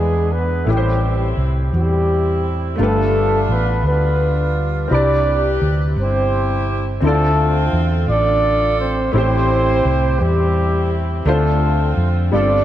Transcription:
Already playing: fingered electric bass E2, grand piano E3 G#3 D4 E4 B4, horn section G#3 B3 D4 G#4
0.32 horn section B3 B4
0.64 fingered electric bass A1, grand piano A2 A3 E4 G4, horn section G3 G4
0.69 horn section C4 E4, grand piano B4
0.77 grand piano C5
1.37 fingered electric bass C2
1.73 fingered electric bass E2, horn section G3 C4 E4 G4
2.76 fingered electric bass G1, grand piano G2 A3 F4
2.80 horn section A3 D4 F4 A4, grand piano G4 B4
3.49 fingered electric bass A1, horn section B3 B4
3.84 fingered electric bass D2, horn section D4
3.88 horn section B3 F4 B4
4.88 fingered electric bass C2, grand piano C3 C4 E4
4.92 horn section D4 G4 B4 D5, grand piano D5 B5
5.62 fingered electric bass D2
5.96 fingered electric bass G1
6.01 horn section C4 E4 G4 C5
7.00 fingered electric bass D2, grand piano D3 C4 E4
7.05 horn section A3 C4 F4 A4, grand piano A4 D5
7.09 grand piano F4
7.73 fingered electric bass E2
8.08 fingered electric bass A1, horn section D4 F4 A4 D5
8.80 horn section C4 C5
9.12 fingered electric bass A1, grand piano A2 A3 E4 G4, horn section C4 C5
9.17 horn section E4 G4, grand piano C5
9.85 fingered electric bass C2
10.20 fingered electric bass E2, horn section G3 C4 E4 G4
11.26 fingered electric bass D2, grand piano D3 A3 D4 F4 C5, horn section A3 C4 F4 A4
11.97 fingered electric bass F2
12.32 fingered electric bass G1, grand piano G2 G3 B3 F4 A4, horn section D4 F4 A4 D5
12.39 grand piano C4

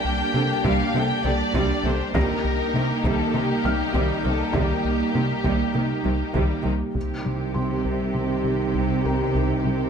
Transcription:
Already playing: analog synth pad G3 A#3 D4 G4, viola section A#3, violin section D4 G4 G5, felt piano A4 A5
0.05 analog synth bass C2
0.34 analog synth bass C3, cello section C3, viola section D3, synth arpeggio sound D4
0.64 analog synth bass C2, cello section C3, viola section G3, synth arpeggio sound G3, violin section F5, taiko
0.94 analog synth bass C3, cello section C3, viola section D3, synth arpeggio sound D4, violin section G5
1.24 analog synth bass C2, cello section C3, viola section D3, synth arpeggio sound A#3, violin section D5
1.54 analog synth bass C2, cello section C3, synth arpeggio sound G3, viola section G3, taiko
1.84 analog synth bass C2, cello section C3, viola section D3, synth arpeggio sound A#3, violin section C5
2.14 analog synth bass C2, cello section C3, synth arpeggio sound D#3, viola section G3 A#3, analog synth pad G3 A#3 D#4 G4, violin section D#4 G4 A#4, felt piano G4 A#6, taiko
2.44 analog synth bass C2
2.74 analog synth bass C3, cello section C3, viola section D#3, synth arpeggio sound A#3
3.04 analog synth bass C2, cello section C3, synth arpeggio sound D#3, viola section G3, violin section A4, taiko
3.34 analog synth bass C3, cello section C3, viola section D#3, synth arpeggio sound A#3, violin section G4
3.65 analog synth bass C2, cello section C3, viola section D#3, synth arpeggio sound G3, felt piano F6
3.94 analog synth bass C2, cello section C3, synth arpeggio sound D#3, viola section G3, taiko
4.25 analog synth bass C2, cello section C3, viola section D#3, synth arpeggio sound G3, violin section A4
4.54 analog synth bass C2, cello section C3, synth arpeggio sound D#3, viola section G3, violin section G4, taiko
4.85 analog synth bass C2
5.14 cello section C3, analog synth bass C3, viola section D#3, synth arpeggio sound A#3
5.44 analog synth bass C2, cello section C3, synth arpeggio sound D#3, viola section G3, taiko
5.74 cello section C3, analog synth bass C3, viola section D#3, synth arpeggio sound A#3
6.04 analog synth bass C2, cello section C3, viola section D#3, synth arpeggio sound G3
6.34 analog synth bass C2, cello section C3, synth arpeggio sound D#3, viola section G3, taiko
6.63 analog synth bass C2, cello section C3, viola section D#3, synth arpeggio sound G3
6.94 double bass section C2, analog synth bass C2, cello section C3, synth arpeggio sound C3, viola section D#3, analog synth pad G3 C4 D#4 G4, violin section G4 G5, taiko
7.25 analog synth bass C3, synth arpeggio sound G3
7.54 analog synth bass C3, synth arpeggio sound G3, felt piano C6
7.85 analog synth bass C2, synth arpeggio sound C3
8.15 analog synth bass C3, synth arpeggio sound G3
8.44 analog synth bass C3, synth arpeggio sound G3
8.74 analog synth bass C2, synth arpeggio sound C3
9.05 analog synth bass C2, felt piano A#4 A#5
9.34 analog synth bass C2, synth arpeggio sound C3
9.65 analog synth bass C3, synth arpeggio sound G3

